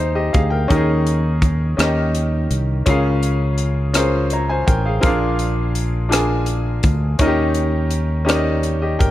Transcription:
Already playing: fingered electric bass D#2, grand piano D#3 C4 D#4 G4 G#4 C5 D#5
0.15 grand piano G4 D#5
0.33 fingered electric bass D2, grand piano G#4 F5, kick, closed hi-hat
0.50 grand piano A#4 G5
0.68 fingered electric bass D#2, grand piano D#3 C#4 D#4 G4 A#4 D#5, kick, closed hi-hat
0.76 grand piano G#4
1.07 closed hi-hat
1.42 kick, closed hi-hat
1.77 fingered electric bass D#2, grand piano D#3 C#4 D#4 G4 A#4 D#5, cross-stick, closed hi-hat
2.15 closed hi-hat
2.51 fingered electric bass C2, closed hi-hat
2.86 fingered electric bass C#2, grand piano C#3 C#4 F4 G#4 A#4 F5, kick, closed hi-hat
3.23 closed hi-hat
3.58 closed hi-hat
3.94 grand piano C#4 F4 G#4 A#4 C5, cross-stick, closed hi-hat
4.30 grand piano C#5 A#5, closed hi-hat
4.49 grand piano C5 G#5
4.67 fingered electric bass A1, grand piano A#4 G5, kick, closed hi-hat
4.86 grand piano G#4 F5
5.00 fingered electric bass A#1, grand piano A#2 C4 F4 G#4 A#4 F5, kick, closed hi-hat
5.07 grand piano D4
5.39 closed hi-hat
5.75 closed hi-hat
6.09 grand piano D4 F4 G#4 A#4 G#5, closed hi-hat
6.13 cross-stick
6.46 closed hi-hat
6.83 fingered electric bass D2, kick, closed hi-hat
7.19 fingered electric bass D#2, grand piano D#3 C#4 D#4 F4 A#4 D#5, kick, closed hi-hat
7.27 grand piano G4
7.54 closed hi-hat
7.91 closed hi-hat
8.25 grand piano C#4 D#4 G4 A#4 D5, closed hi-hat
8.30 cross-stick
8.35 grand piano D#5
8.63 closed hi-hat
8.82 grand piano G4 D#5
8.99 fingered electric bass G1, grand piano A#4 G5, kick, closed hi-hat

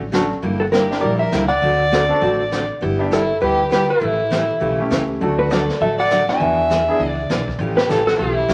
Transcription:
Already playing: upright bass A1
0.12 steel-string acoustic guitar D3 F#3 A3 C#4 F#4, upright piano C#4 D4 F#4 A4, snare, hi-hat pedal
0.42 upright bass G1, steel-string acoustic guitar D3 G3 A#3 E4 G4, brush sweep
0.60 fiddle F#4, hollow-body jazz guitar A4
0.72 steel-string acoustic guitar D3 G3 A#3 E4 G4, fiddle G4, hollow-body jazz guitar A#4, snare, hi-hat pedal
0.90 upright piano D4 E4 G4 A#4, snare
1.01 upright bass A#1, steel-string acoustic guitar D3 G3 A#3 E4 G4, fiddle A#4, hollow-body jazz guitar D5, brush sweep
1.18 fiddle A#4, hollow-body jazz guitar E5
1.32 upright bass C#2, steel-string acoustic guitar D3 G3 A#3 E4 G4, snare, hi-hat pedal
1.48 fiddle D5, hollow-body jazz guitar F#5
1.62 upright bass D2, steel-string acoustic guitar D3 A3 C4 F#4 A4, brush sweep
1.91 steel-string acoustic guitar D3 A3 C4 F#4 A4, snare, hi-hat pedal
2.08 upright piano C4 D4 F#4 A4
2.21 upright bass A1, steel-string acoustic guitar D3 A3 C4 F#4 A4, brush sweep
2.51 steel-string acoustic guitar D3 A3 C4 F#4 A4, snare, hi-hat pedal
2.81 upright bass G1, steel-string acoustic guitar G3 B3 E4 G4, brush sweep
2.99 upright piano B3 D4 E4 G4
3.11 steel-string acoustic guitar G3 B3 E4 G4, fiddle E4, hollow-body jazz guitar A4, snare, hi-hat pedal
3.41 upright bass D2, steel-string acoustic guitar G3 B3 E4 G4, fiddle G4, hollow-body jazz guitar B4, brush sweep
3.71 steel-string acoustic guitar G3 B3 E4 G4, fiddle G4, hollow-body jazz guitar B4, snare, hi-hat pedal
3.89 fiddle E4, hollow-body jazz guitar A4
4.00 upright bass A1, steel-string acoustic guitar C#3 E3 A3 C#4 G4, brush sweep
4.30 steel-string acoustic guitar C#3 E3 A3 C#4 G4, snare, hi-hat pedal
4.60 upright bass B1, steel-string acoustic guitar C#3 E3 A3 C#4 G4, brush sweep
4.78 upright piano A3 C#4 E4 G4
4.90 upright bass C#2, steel-string acoustic guitar C#3 E3 A3 C#4 G4, snare, hi-hat pedal
5.20 upright bass D2, steel-string acoustic guitar D3 F#3 A3 D4 F#4, upright piano A3 D4 F#4 A4, brush sweep
5.39 fiddle F#4, hollow-body jazz guitar B4
5.50 steel-string acoustic guitar D3 F#3 A3 D4 F#4, fiddle A4, hollow-body jazz guitar D5, snare, hi-hat pedal
5.69 snare
5.80 upright bass A1, steel-string acoustic guitar D3 F#3 A3 D4 F#4, fiddle A4, hollow-body jazz guitar E5, brush sweep
5.98 fiddle D5, hollow-body jazz guitar F#5
6.10 steel-string acoustic guitar D3 F#3 A3 D4 F#4, snare, hi-hat pedal
6.28 upright piano B3 D4 E4 F#4, fiddle E5, hollow-body jazz guitar G#5, snare
6.40 upright bass E2, steel-string acoustic guitar E3 B3 D4 G#4, brush sweep
6.70 steel-string acoustic guitar E3 B3 D4 G#4, snare, hi-hat pedal
6.88 upright piano B3 D4 E4 G#4
7.00 upright bass C#2, steel-string acoustic guitar E3 B3 D4 G#4, brush sweep
7.08 fiddle D5, hollow-body jazz guitar F#5
7.30 upright bass B1, steel-string acoustic guitar E3 B3 D4 G#4, snare, hi-hat pedal
7.48 kick
7.59 upright bass A1, steel-string acoustic guitar C#3 E3 A3 C#4 G4, brush sweep
7.76 fiddle G4, hollow-body jazz guitar B4, snare
7.89 upright bass A1, steel-string acoustic guitar C#3 E3 A3 C#4 G4, fiddle A4, hollow-body jazz guitar C#5, snare, hi-hat pedal
8.07 fiddle F#4, hollow-body jazz guitar A4, snare
8.18 upright bass B1, steel-string acoustic guitar C#3 E3 A3 C#4 G4, fiddle E4, hollow-body jazz guitar G4, brush sweep
8.48 upright bass C#2, steel-string acoustic guitar C#3 E3 A3 C#4 G4, upright piano A3 C#4 E4 G4, snare, hi-hat pedal

